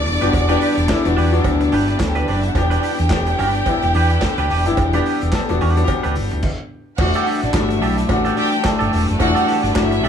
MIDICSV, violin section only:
0, 0, Header, 1, 2, 480
1, 0, Start_track
1, 0, Key_signature, 1, "minor"
1, 0, Tempo, 554017
1, 289, Time_signature, 4, 2, 24, 8
1, 8738, End_track
2, 0, Start_track
2, 0, Title_t, "Violin section"
2, 0, Program_c, 0, 48
2, 0, Note_on_c, 0, 74, 99
2, 0, Note_on_c, 0, 86, 105
2, 1709, Note_off_c, 0, 74, 0
2, 1710, Note_off_c, 0, 86, 0
2, 1788, Note_on_c, 0, 55, 65
2, 1790, Note_on_c, 0, 67, 65
2, 1855, Note_on_c, 0, 57, 60
2, 1857, Note_on_c, 0, 69, 64
2, 1861, Note_off_c, 0, 55, 0
2, 1862, Note_off_c, 0, 67, 0
2, 1905, Note_on_c, 0, 59, 63
2, 1906, Note_on_c, 0, 71, 71
2, 1913, Note_off_c, 0, 57, 0
2, 1914, Note_off_c, 0, 69, 0
2, 1952, Note_on_c, 0, 72, 74
2, 1958, Note_on_c, 0, 60, 65
2, 1965, Note_off_c, 0, 59, 0
2, 1966, Note_off_c, 0, 71, 0
2, 2017, Note_on_c, 0, 62, 71
2, 2025, Note_on_c, 0, 74, 83
2, 2029, Note_off_c, 0, 72, 0
2, 2032, Note_off_c, 0, 60, 0
2, 2087, Note_on_c, 0, 64, 68
2, 2088, Note_on_c, 0, 76, 79
2, 2096, Note_off_c, 0, 62, 0
2, 2099, Note_off_c, 0, 74, 0
2, 2142, Note_on_c, 0, 66, 74
2, 2146, Note_on_c, 0, 78, 93
2, 2150, Note_off_c, 0, 64, 0
2, 2150, Note_off_c, 0, 76, 0
2, 2183, Note_on_c, 0, 79, 105
2, 2187, Note_on_c, 0, 67, 102
2, 2203, Note_off_c, 0, 66, 0
2, 2205, Note_off_c, 0, 78, 0
2, 5285, Note_off_c, 0, 79, 0
2, 5287, Note_off_c, 0, 67, 0
2, 6042, Note_on_c, 0, 78, 113
2, 6047, Note_on_c, 0, 66, 111
2, 6239, Note_off_c, 0, 78, 0
2, 6242, Note_off_c, 0, 66, 0
2, 6427, Note_on_c, 0, 62, 81
2, 6427, Note_on_c, 0, 74, 94
2, 6512, Note_off_c, 0, 62, 0
2, 6512, Note_off_c, 0, 74, 0
2, 6523, Note_on_c, 0, 76, 96
2, 6525, Note_on_c, 0, 64, 81
2, 6979, Note_off_c, 0, 76, 0
2, 6980, Note_off_c, 0, 64, 0
2, 7012, Note_on_c, 0, 66, 86
2, 7018, Note_on_c, 0, 78, 77
2, 7120, Note_off_c, 0, 66, 0
2, 7124, Note_off_c, 0, 78, 0
2, 7137, Note_on_c, 0, 78, 76
2, 7139, Note_on_c, 0, 66, 68
2, 7226, Note_off_c, 0, 78, 0
2, 7227, Note_off_c, 0, 66, 0
2, 7242, Note_on_c, 0, 79, 121
2, 7243, Note_on_c, 0, 67, 107
2, 7438, Note_off_c, 0, 79, 0
2, 7439, Note_off_c, 0, 67, 0
2, 7962, Note_on_c, 0, 78, 126
2, 7964, Note_on_c, 0, 66, 111
2, 8158, Note_off_c, 0, 78, 0
2, 8159, Note_off_c, 0, 66, 0
2, 8337, Note_on_c, 0, 62, 90
2, 8339, Note_on_c, 0, 74, 92
2, 8425, Note_off_c, 0, 62, 0
2, 8426, Note_off_c, 0, 74, 0
2, 8443, Note_on_c, 0, 64, 85
2, 8443, Note_on_c, 0, 76, 105
2, 8738, Note_off_c, 0, 64, 0
2, 8738, Note_off_c, 0, 76, 0
2, 8738, End_track
0, 0, End_of_file